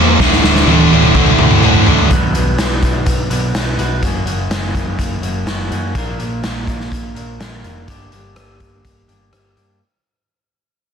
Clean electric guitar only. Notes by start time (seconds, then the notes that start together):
2.10 B2 F#3 B3 D4 F#4 B4
2.34 B3 D4 F#4 B4
2.58 B2 F#3 B3 D4 F#4 B4
3.30 B3 D4 F#4 B4
3.55 B3 D4 F#4 B4
3.79 B3 D4 F#4 B4
4.02 F#2 C#3 F#3 A#3 C#4 F#4
4.26 F#3 A#3 C#4 F#4
4.50 F#2 C#3 F#3 A#3 C#4 F#4
5.22 F#3 A#3 C#4 F#4
5.46 F#3 A#3 C#4 F#4
5.71 F#3 A#3 C#4 F#4
5.95 A#2 F3 A#3 D4 F4 A#4
6.18 A#3 D4 F4 A#4
6.42 A#2 F3 A#3 D4 F4 A#4
7.15 A#3 D4 F4 A#4
7.39 A#3 D4 F4 A#4
7.63 A#3 D4 F4 A#4
7.87 G2 D3 G3 A#3 D4 G4
8.11 G3 A#3 D4 G4
8.35 G2 D3 G3 A#3 D4 G4
9.08 G3 A#3 D4 G4
9.31 G3 A#3 D4 G4
9.55 G3 A#3 D4 G4